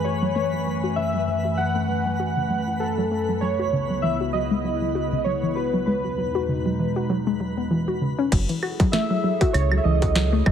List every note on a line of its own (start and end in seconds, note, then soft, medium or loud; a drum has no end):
0.00 3.38 F#2 medium
0.00 3.38 E3 medium
0.00 3.38 A3 medium
0.00 7.71 B4 medium
0.00 3.38 G#5 medium
0.00 7.71 B5 medium
0.04 0.22 F#4 medium
0.04 0.33 C#5 medium
0.22 0.31 F#3 loud
0.35 0.47 A3 loud
0.35 0.99 C#5 medium
0.53 0.58 F#3 medium
0.66 0.73 F#3 medium
0.84 0.93 F#4 loud
0.96 1.09 C#3 medium
0.96 1.60 E5 loud
1.14 1.20 F#3 medium
1.28 1.39 E3 medium
1.45 1.58 F#4 medium
1.57 1.70 F#3 loud
1.57 2.84 F#5 loud
1.75 1.84 A3 loud
1.89 1.96 F#3 medium
2.06 2.12 F#3 medium
2.20 2.31 F#4 loud
2.37 2.46 C#3 medium
2.50 2.57 F#3 medium
2.68 2.76 E3 medium
2.80 2.97 F#4 medium
2.80 3.43 A4 medium
2.98 3.07 F#3 loud
3.12 3.23 A3 loud
3.29 3.34 F#3 medium
3.41 5.84 C#2 medium
3.41 5.85 C#3 medium
3.41 3.49 F#3 medium
3.41 5.84 B3 medium
3.41 5.85 E4 medium
3.41 4.05 C#5 loud
3.59 3.68 F#4 loud
3.73 3.84 C#3 medium
3.90 3.95 F#3 medium
4.02 4.15 E3 medium
4.02 4.16 E5 medium
4.21 4.33 F#4 medium
4.33 4.45 F#3 loud
4.33 5.17 D#5 loud
4.51 4.60 G#3 loud
4.65 4.71 F#3 medium
4.82 4.87 F#3 medium
4.95 5.07 F#4 loud
5.12 5.21 C#3 medium
5.18 5.25 D#5 medium
5.24 5.33 F#3 medium
5.24 5.57 C#5 medium
5.43 5.52 E3 medium
5.55 5.73 F#4 medium
5.55 5.85 B4 medium
5.74 5.83 F#3 loud
5.86 7.69 E2 medium
5.86 7.69 B2 medium
5.86 7.69 G#3 medium
5.86 5.99 G#3 loud
5.86 7.69 D#4 medium
5.86 7.05 B4 medium
6.04 6.10 F#3 medium
6.18 6.25 F#3 medium
6.35 6.44 F#4 loud
6.49 6.60 C#3 medium
6.66 6.71 F#3 medium
6.79 6.90 E3 medium
6.96 7.09 F#4 medium
7.10 7.21 F#3 loud
7.27 7.36 G#3 medium
7.40 7.52 F#3 medium
7.57 7.66 B3 medium
7.71 7.87 E3 medium
7.88 7.97 F#4 medium
8.01 8.13 C#3 medium
8.19 8.24 C#4 loud
8.32 8.46 F#1 loud
8.32 10.52 F#3 medium
8.32 8.39 F#3 medium
8.32 10.52 E4 medium
8.32 10.52 G#4 medium
8.32 10.52 A4 medium
8.32 kick loud
8.32 closed hi-hat medium
8.32 crash loud
8.49 8.58 E3 medium
8.49 closed hi-hat soft
8.63 8.79 F#4 medium
8.63 high woodblock medium
8.80 8.89 F#3 loud
8.80 kick loud
8.80 closed hi-hat medium
8.92 9.05 A3 loud
8.92 9.56 E5 loud
8.92 snare loud
8.92 closed hi-hat medium
9.11 9.16 F#3 medium
9.24 9.31 F#3 medium
9.41 9.50 F#4 loud
9.41 kick loud
9.41 closed hi-hat medium
9.53 9.80 C#2 medium
9.53 9.66 C#3 medium
9.53 9.79 C#5 loud
9.53 closed hi-hat medium
9.53 high woodblock medium
9.72 9.77 F#3 medium
9.72 high woodblock medium
9.77 9.84 E5 medium
9.84 10.42 C#2 medium
9.84 9.96 E3 medium
9.84 10.52 D#5 loud
10.02 10.15 F#4 medium
10.02 kick loud
10.02 closed hi-hat medium
10.15 10.27 F#3 loud
10.15 snare loud
10.15 closed hi-hat medium
10.33 10.42 A3 loud
10.46 10.52 F#1 loud
10.46 10.52 F#3 medium
10.46 kick loud
10.46 high woodblock medium